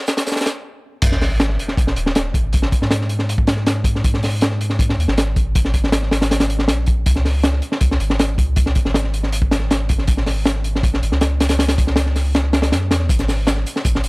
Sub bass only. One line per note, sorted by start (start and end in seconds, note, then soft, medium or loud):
1.02 1.57 G#1 loud
1.77 1.95 G#1 medium
1.97 2.33 D#1 medium
2.34 2.71 G#1 medium
2.82 4.97 G#2 loud
4.98 5.07 D#2 loud
5.08 6.70 G#1 loud
6.68 7.05 A#1 medium
7.06 7.61 C#2 loud
7.81 7.98 C#2 medium
8.00 8.37 G#1 medium
8.38 8.74 C#2 medium
8.85 11.01 G#1 medium
11.02 11.11 G#1 medium
11.12 12.74 C#2 loud
12.72 12.92 F#2 medium
12.91 13.08 E2 loud
13.09 13.65 G#1 loud
13.85 14.02 G#1 medium
14.04 14.09 D#1 medium